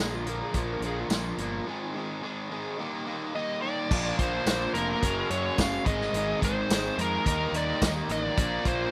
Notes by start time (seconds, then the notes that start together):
Already playing: A#1 A#2
0.00 D3 F3 A#3 D4 G#4 A#4
0.14 F4
0.25 A#2 D3 F3 A#3 D4 A#4, closed hi-hat
0.43 G#4
0.53 A#1 A#2 D3 F3 A#3 D4 A#4, kick, closed hi-hat
0.58 F4
0.73 A#4
0.80 A#1 A#2 D3 F3, closed hi-hat
0.84 A#3 D4 G#4 A#4
1.01 F4
1.09 A#1 A#2 D3 F3 A#3, snare, closed hi-hat, tambourine
1.13 D4 F4 A#4
1.38 G1 A#2 D3 F3 A#3 D4 A#4, closed hi-hat
1.66 G#2 D#3 G#3 C4 D#4 G#4
1.94 G#2 D#3 G#3 C4 D#4 G#4
2.22 G#2 D#3 G#3 C4 D#4 G#4
2.50 G#2 D#3 G#3 C4 D#4 G#4
2.78 D#3 G3 A#3 D#4 G4
3.06 D#3 G3 A#3 D#4 G4
3.34 D#3 G3 A#3 D#4 G4 D#5
3.62 D#3 G3 A#3 D#4 G4 D5
3.91 A#1 A#2 F3 A#3 D4 F4, kick, crash
4.19 A#1 A#2 F3 A#3 D4 F4 C5, kick, closed hi-hat
4.46 A#1 A#2 F3 A#3 D4 F4, snare, closed hi-hat, tambourine
4.74 F1 A#2 F3 A#3 D4 F4 A#4, closed hi-hat
5.02 F#1 F#2 C#3 F#3 A#3 C#4 F#4, kick, closed hi-hat
5.30 F#2 C#3 F#3 A#3 C#4 F#4 C#5, closed hi-hat
5.58 F#1 F#2 C#3 F#3 A#3 C#4 F#4 F5, kick, snare, closed hi-hat, tambourine
5.86 G#1 G#2 D#3 G#3 C4 D#4 D#5, kick, closed hi-hat
5.90 G#4
6.01 snare
6.13 G#1 G#2 D#3 G#3 C4 D#4, closed hi-hat
6.18 G#4
6.42 G#1 G#2 D#3 G#3 C4 D#4 G#4 C5, kick, closed hi-hat
6.69 G#1 G#2 D#3 G#3 C4, snare, closed hi-hat, tambourine
6.73 D#4 G#4
6.97 F2 G#2 D#3 G#3 C4 D#4 G#4 A#4, closed hi-hat
7.26 D#2 D#3 G3 A#3 D#4 G4 A#4, kick, closed hi-hat
7.52 D#2 D#3 G3 A#3 D#4 G4, closed hi-hat
7.56 A#4 D5
7.82 D#2 D#3 G3 A#3 D#4 G4 A#4 D#5, kick, snare, closed hi-hat, tambourine
8.08 A1 D#3 G3 A#3 D#4 G4 A#4 D#5, closed hi-hat
8.23 D5
8.37 A#1 A#2 F3 A#3 D4 F4 A#4, kick, closed hi-hat
8.64 A#1 A#2 F3 A#3 D4 F4 A#4 C5, kick, closed hi-hat